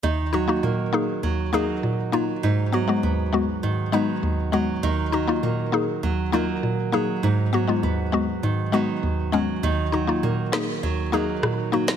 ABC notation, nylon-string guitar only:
X:1
M:4/4
L:1/8
Q:1/4=100
K:Ebm
V:1 name="Nylon-string guitar" clef=bass
[E,E] G, B,2 G, [G,B,E]2 G, | [A,,E] G, C2 E, [G,CE]2 G, | [E,E] G, B,2 G, [G,B,E]2 G, | [A,,E] G, C2 E, [G,CE]2 G, |
[E,E] G, B,2 G, [G,B,E]2 G, |]